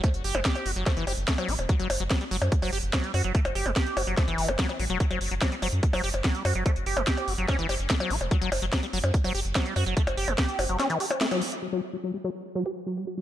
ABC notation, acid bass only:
X:1
M:4/4
L:1/16
Q:1/4=145
K:F#phr
V:1 name="Acid bass" clef=bass
A, z G F, G2 F F, A, E, G z A, F, F z | F, F, z F, F, G, F, z2 F, G z F, G, F F, | A, z G F, G2 F F, A, E,2 F F, F, F, F, | z F, z F, F, G, F, z2 F, G z F, G, F F, |
A, z G F, G2 F F, C E, G z A, F, F z | F, F, z F, F, G, F, z2 F, G z F, G, F F, | A, z G F, G2 F F, C E, G z A, F, F z | F, F, z F, F, G, F, z2 F, G z F, G, F F, |]